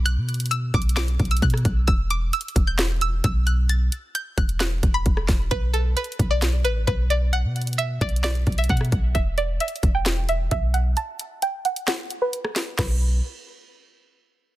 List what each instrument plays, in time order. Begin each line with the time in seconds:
Already playing: 808-style bass B1
0.06 synth pluck F#6, closed hi-hat
0.17 808-style bass B2
0.29 closed hi-hat
0.34 closed hi-hat
0.40 closed hi-hat
0.46 closed hi-hat
0.51 synth pluck E6, closed hi-hat
0.74 808-style bass B1, synth pluck D6, kick, closed hi-hat
0.82 closed hi-hat
0.89 closed hi-hat
0.97 synth pluck D6, snare, closed hi-hat
1.08 closed hi-hat
1.20 808-style bass B1, kick, closed hi-hat
1.25 closed hi-hat
1.31 synth pluck E6, closed hi-hat
1.37 closed hi-hat
1.42 808-style bass B2, synth pluck F#6, kick, closed hi-hat
1.50 cross-stick, closed hi-hat
1.57 closed hi-hat
1.65 808-style bass B1, kick, closed hi-hat
1.87 808-style bass E1, synth pluck E6, kick, closed hi-hat
2.10 synth pluck D6, closed hi-hat
2.33 synth pluck E6, closed hi-hat
2.41 closed hi-hat
2.48 closed hi-hat
2.56 808-style bass E1, kick, closed hi-hat
2.67 synth pluck G6
2.79 snare, closed hi-hat
3.01 synth pluck E6, closed hi-hat
3.24 808-style bass B1, synth pluck E6, kick, closed hi-hat
3.47 synth pluck F#6, closed hi-hat
3.69 synth pluck A6, closed hi-hat
3.92 closed hi-hat
4.15 synth pluck G6, closed hi-hat
4.38 808-style bass E1, synth pluck F#6, kick, closed hi-hat
4.49 closed hi-hat
4.60 synth pluck F#6, snare, closed hi-hat
4.83 808-style bass E1, kick, closed hi-hat
4.94 synth pluck B5
5.06 808-style bass E1, kick, closed hi-hat
5.17 cross-stick
5.28 808-style bass E1, kick, snare, open hi-hat
5.51 808-style bass B1, synth pluck B4, kick, closed hi-hat
5.73 synth pluck A4, closed hi-hat
5.97 synth pluck B4, closed hi-hat
6.04 closed hi-hat
6.12 closed hi-hat
6.19 808-style bass B1, kick, closed hi-hat
6.31 synth pluck D5
6.42 snare, closed hi-hat
6.65 808-style bass A1, synth pluck B4, closed hi-hat
6.87 808-style bass B1, synth pluck B4, kick, closed hi-hat
7.10 synth pluck D5, closed hi-hat
7.33 synth pluck F#5, closed hi-hat
7.44 808-style bass B2
7.56 closed hi-hat
7.62 closed hi-hat
7.67 closed hi-hat
7.73 closed hi-hat
7.78 synth pluck E5, closed hi-hat
8.01 808-style bass B1, synth pluck D5, kick, closed hi-hat
8.09 closed hi-hat
8.16 closed hi-hat
8.24 synth pluck D5, snare, closed hi-hat
8.35 closed hi-hat
8.47 808-style bass B1, kick, closed hi-hat
8.52 closed hi-hat
8.58 synth pluck E5, closed hi-hat
8.64 closed hi-hat
8.69 808-style bass B2, synth pluck F#5, kick, closed hi-hat
8.77 cross-stick, closed hi-hat
8.85 closed hi-hat
8.92 808-style bass B1, kick, closed hi-hat
9.15 808-style bass E1, synth pluck E5, kick, closed hi-hat
9.38 synth pluck D5, closed hi-hat
9.60 synth pluck E5, closed hi-hat
9.68 closed hi-hat
9.76 closed hi-hat
9.83 808-style bass E1, kick, closed hi-hat
9.95 synth pluck G5
10.06 snare, closed hi-hat
10.29 synth pluck E5, closed hi-hat
10.51 808-style bass B1, synth pluck E5, kick, closed hi-hat
10.74 synth pluck F#5, closed hi-hat
10.97 synth pluck A5, closed hi-hat
11.19 closed hi-hat
11.42 synth pluck G5, closed hi-hat
11.65 synth pluck F#5, closed hi-hat
11.76 closed hi-hat
11.88 synth pluck F#5, snare, closed hi-hat
12.11 closed hi-hat
12.22 synth pluck B4
12.33 closed hi-hat
12.45 cross-stick
12.56 snare, open hi-hat
12.78 808-style bass B1, synth pluck B4, kick, snare, crash